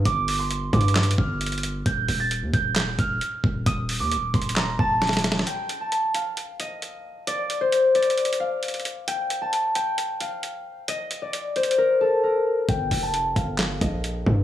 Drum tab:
HH |x-----------o-----------x-----------x---x---x---x---x---x---------------x--x--x--x--x-----------|x-----------o-----------x-----------x-----------x-----------x-----------x-----------------------|x-----------o-----------x-----------x---x---x---x-----------------------x--x--x--x--x-----------|x-----------x-----------x-----------x-----------x-----------x-----------x-----------------------|
CP |------------------------------------------------x-----------------------------------------------|------------------------------------------------x-----------------------------------------------|------------------------------------------------x-----------------------------------------------|------------------------------------------------------------------------------------------------|
SD |------------------------------------------------o-----------------------------------------------|------------------------------------------------o-----------------------------------------------|------------------------------------------------o-----------------------o---o---o---o---o---o---|------------------------------------------------------------------------------------------------|
BD |o-----------------------------------o-----------------------o-----------------------------------|o-----------------------------------o-----------------------o-----------------------o-----------|o-----------------------------------o-----------------------o-----------------------------------|------------------------------------------------------------------------------------------------|

HH |x-----------x-----------x-----------x---x---x---x---x---x---------------x--x--x--x--x-----------|x-----------x-----------x-----------x-----------x-----------x-----------x-----------------------|x-----------x-----------x-----------x---x---x---------------------------------------------------|x-----------o-----------x-----------x-----------x-----------x-----------x-----------------------|
CP |------------------------------------------------------------------------------------------------|------------------------------------------------------------------------------------------------|------------------------------------------------------------------------------------------------|------------------------------------------------x-----------------------------------------------|
SD |------------------------------------------------------------------------------------------------|------------------------------------------------------------------------------------------------|------------------------------------------------------------------------------------------------|------------------------------------------------o-----------------------------------------------|
BD |------------------------------------------------------------------------------------------------|------------------------------------------------------------------------------------------------|------------------------------------------------------------------------------------------------|o-----------------------------------o-----------------------o-----------------------o-----------|